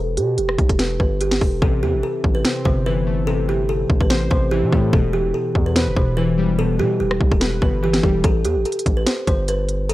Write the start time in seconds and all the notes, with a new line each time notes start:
Already playing: E1 A4
0.17 B2 G4, closed hi-hat
0.38 E1 G4, closed hi-hat
0.49 cross-stick
0.58 B1, kick, closed hi-hat
0.69 E1 A4, kick, closed hi-hat
0.79 B4, snare, closed hi-hat
1.00 G1 B4, kick
1.21 G4, closed hi-hat
1.31 snare
1.41 E1 A4, kick, open hi-hat
1.62 A1 C3 A4, kick
1.83 E2 E3 G4
1.94 A1
2.03 A4
2.24 A1, kick
2.35 B4
2.44 C4 C5, snare
2.65 G1 C3 C5, kick
2.86 E3 B4
3.07 A3
3.27 C3 A4
3.48 E3 G4
3.69 A4
3.90 A1, kick
4.00 A1 B4, kick
4.10 C5, snare
4.31 A1 C3 C5, kick
4.51 E3 G4
4.63 C3
4.72 A2 A3 A4, kick
4.93 E1 B2 A4, kick
5.13 E3 G4
5.34 A4
5.55 E2, kick
5.66 B4
5.76 B4 C5, snare
5.87 F1
5.96 E1 B2 C5, kick
6.17 E3 B4
6.38 G3
6.58 B2 A4
6.79 B2 E3 G4
7.00 E1 G4
7.11 cross-stick
7.21 B1, kick
7.31 E1 A4, kick
7.41 B4, snare
7.62 G1 B2 B4, kick
7.83 E3 G4
7.94 snare
8.03 E1 G3 A4, kick
8.24 A1 A4, kick, closed hi-hat
8.45 E2 G4, closed hi-hat
8.56 A1
8.65 A4, closed hi-hat
8.72 closed hi-hat
8.79 closed hi-hat
8.86 A1, kick, closed hi-hat
8.97 B4
9.07 C5, snare, closed hi-hat
9.27 G1 C5, kick, closed hi-hat
9.48 B4, closed hi-hat
9.69 closed hi-hat
9.89 A4, closed hi-hat